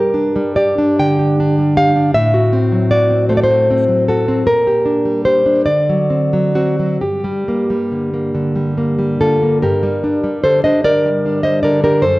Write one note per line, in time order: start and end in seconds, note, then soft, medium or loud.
0.00 2.11 G2 soft
0.00 0.56 G4 soft
0.00 0.53 A#4 medium
0.14 0.77 D4 soft
0.36 1.58 G3 soft
0.56 1.18 G4 soft
0.56 0.98 D5 medium
0.79 1.39 D4 soft
1.00 2.15 D3 soft
1.00 1.74 G5 medium
1.19 1.76 G4 soft
1.40 1.95 D4 soft
1.59 2.15 G3 soft
1.77 2.15 G4 soft
1.77 2.14 F5 medium
1.97 2.16 D4 soft
2.15 4.43 A2 medium
2.15 2.89 E5 medium
2.34 2.90 F#4 soft
2.53 3.09 C4 soft
2.72 3.87 F#3 soft
2.91 3.49 F#4 soft
2.91 3.28 D5 medium
3.11 3.69 C4 soft
3.29 3.88 A3 soft
3.29 3.36 C5 medium
3.37 3.43 D5 medium
3.43 4.05 C5 medium
3.50 4.08 F#4 soft
3.70 4.27 C4 soft
3.88 4.46 F#3 soft
4.08 4.47 F#4 soft
4.08 4.45 A4 medium
4.28 4.47 C4 soft
4.47 5.65 A#2 soft
4.47 5.23 A#4 medium
4.67 5.24 G4 soft
4.86 5.44 D4 soft
5.05 5.68 G3 soft
5.25 5.68 G4 soft
5.25 5.65 C5 medium
5.45 5.67 D4 soft
5.65 6.98 D3 soft
5.65 6.51 D5 medium
5.89 6.32 F#3 soft
6.10 6.55 C4 soft
6.33 6.78 F#3 soft
6.55 7.02 C4 soft
6.55 7.00 F#4 medium
6.79 7.02 F#3 soft
7.02 9.58 G2 soft
7.02 9.15 G4 medium
7.24 7.69 G3 soft
7.48 8.13 A#3 soft
7.70 8.54 G3 soft
7.92 8.34 D3 soft
8.14 8.76 A#3 soft
8.35 9.19 D3 soft
8.56 8.97 G3 soft
8.78 9.41 A#3 soft
8.98 9.63 G3 soft
9.20 9.63 D3 soft
9.20 9.60 F4 soft
9.20 9.61 A4 medium
9.42 9.63 A#3 soft
9.62 12.00 G2 soft
9.62 10.41 G4 soft
9.62 10.41 A#4 medium
9.82 10.22 G3 soft
10.04 10.44 D4 soft
10.24 11.04 G3 soft
10.43 10.64 D3 soft
10.43 10.64 A4 medium
10.43 10.63 C5 medium
10.64 10.84 D4 soft
10.64 10.84 C5 medium
10.64 10.84 D#5 medium
10.84 11.63 D3 soft
10.84 11.40 A#4 medium
10.84 11.42 D5 medium
11.05 11.43 G3 soft
11.26 11.83 D4 soft
11.43 12.04 G3 soft
11.43 11.63 C5 soft
11.43 11.63 D#5 medium
11.63 12.04 D3 soft
11.63 11.83 A#4 medium
11.63 11.84 D5 medium
11.84 12.04 D4 soft
11.84 12.03 G4 soft
11.84 12.04 A#4 medium
12.02 12.19 F#2 medium
12.02 12.19 A4 medium
12.02 12.19 C5 medium